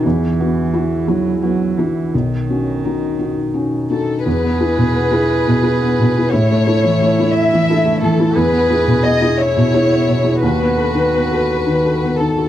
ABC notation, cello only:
X:1
M:6/8
L:1/16
Q:3/8=58
K:E
V:1 name="Cello"
E,6 F,2 F,2 E,2 | D,8- D,2 z2 | G12 | E12 |
G6 E6 | F8- F z3 |]